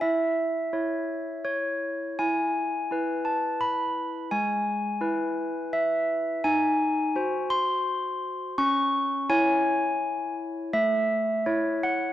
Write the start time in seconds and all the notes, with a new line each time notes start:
0.01 E4 E5
0.73 E4 C#5
1.45 C#5
2.19 E4 G#5
2.91 E4 B4
3.25 A5
3.61 B5
4.31 G#3 G#5
5.01 E4 B4
5.73 E5
6.44 D#4 G#5
7.16 F#4 C5
7.50 C6
8.58 C#4 C#6
9.29 E4 C#5 G#5
10.73 A3 E5
11.46 E4 C#5
11.83 F#5